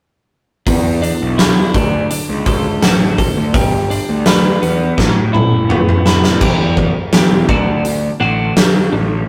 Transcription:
0.67 E2, kick, open hi-hat
1.02 D4, open hi-hat
1.22 B1
1.38 E4, snare, open hi-hat
1.74 D2 D3, kick, open hi-hat
2.10 D4, open hi-hat
2.29 C#2
2.46 A4, kick, open hi-hat
2.82 A1 F#4, snare, open hi-hat
3.18 A4, kick, open hi-hat
3.37 D2
3.54 G1 G3, kick, open hi-hat
3.90 D4, open hi-hat
4.09 D2
4.26 B4, snare, open hi-hat
4.62 E2 B3, open hi-hat
4.97 A1 A2, kick, snare
5.15 A2
5.33 E4, mid tom
5.51 F#1
5.69 B3, mid tom
5.89 mid tom
6.05 F1 E4, snare
6.24 snare
6.41 E1 E2 E3 G3, kick, crash
6.59 E2
6.77 E2 E3, kick
7.13 E2 E3 G3, snare, open hi-hat
7.30 E1
7.48 D2 D3 D4 F#4, kick
7.84 D3 D4, open hi-hat
8.20 A1 D3 D4 F#4
8.56 D3 D4, snare, open hi-hat
8.92 A1 D3 D4

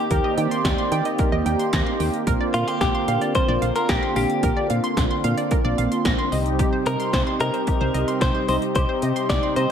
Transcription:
Already playing: D#3 A#3 C4 D#4 G4
0.11 D#2 A#4 D5, kick, closed hi-hat
0.24 D#5
0.38 D#3 G5, closed hi-hat
0.51 C6, closed hi-hat
0.65 D#2, kick, snare, closed hi-hat
0.78 C6
0.92 D#3 G5, closed hi-hat
1.05 D#5, closed hi-hat
1.19 A#4, kick, closed hi-hat
1.32 D#2 D#5
1.46 D#2 G5, closed hi-hat
1.59 C6, closed hi-hat
1.73 D#2 A#6, kick, snare, closed hi-hat
1.86 C6
2.00 D#2 G5, open hi-hat
2.14 closed hi-hat
2.27 A#1 D3 A#3 C4 D4 F4 A#4, kick, closed hi-hat
2.41 D5
2.54 A#2 F4 F5, closed hi-hat
2.68 G4 C6, closed hi-hat
2.81 A#1 G4, kick, snare, closed hi-hat
2.95 C6
3.08 A#2 F5, closed hi-hat
3.21 D5, closed hi-hat
3.35 A#4 C5, kick, closed hi-hat
3.48 A#1 D5
3.62 A#1 F5, closed hi-hat
3.76 A#4 C6, closed hi-hat
3.89 A#1 G4 A#6, kick, snare, closed hi-hat
4.03 C6
4.16 A#1 G4 F5, open hi-hat
4.30 closed hi-hat
4.43 A#1 A#4, kick, closed hi-hat
4.57 D5
4.70 A#2 F5, closed hi-hat
4.84 C6, closed hi-hat
4.97 A#1, kick, snare, closed hi-hat
5.11 C6
5.24 A#2 F5, closed hi-hat
5.38 D5, closed hi-hat
5.51 A#4, kick, closed hi-hat
5.65 A#1 D5
5.78 A#1 F5, closed hi-hat
5.92 C6, closed hi-hat
6.05 A#1 A#6, kick, snare, closed hi-hat
6.19 C6
6.32 C2 C3 G3 C4 D#4 G4 D#5, open hi-hat
6.46 closed hi-hat
6.59 G4, kick, closed hi-hat
6.73 C5
6.86 C3 A#4 D#5, closed hi-hat
7.00 C6, closed hi-hat
7.13 C2 C5, kick, snare, closed hi-hat
7.27 C6
7.40 C3 A#4 D#5, closed hi-hat
7.54 C5, closed hi-hat
7.67 G4, kick, closed hi-hat
7.81 C2 C5
7.94 C2 D#5, closed hi-hat
8.08 C6, closed hi-hat
8.21 C2 C5 G6, kick, snare, closed hi-hat
8.35 C6
8.48 C2 C5 D#5, open hi-hat
8.62 closed hi-hat
8.75 C2 G4 C5, kick, closed hi-hat
8.89 C5
9.02 C3 D#5, closed hi-hat
9.16 C6, closed hi-hat
9.29 C2 D5, kick, snare, closed hi-hat
9.43 C6
9.56 C3 C5 D#5, closed hi-hat

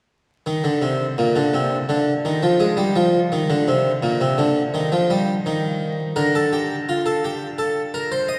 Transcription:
0.46 D#3
0.64 D3
0.82 C3
1.18 A#2
1.36 D3
1.54 C3
1.89 D3
2.25 D#3
2.43 F3
2.60 G#3
2.77 G3
2.96 F3
3.32 D#3
3.50 D3
3.68 C3
4.03 A#2
4.21 C3
4.38 D3
4.74 D#3
4.92 F3
5.10 G3
5.46 D#3
6.16 D3 A#4
6.35 A4
6.53 G4
6.89 F4
7.06 A4
7.24 G4
7.58 A4
7.94 A#4
8.12 C5
8.29 D#5

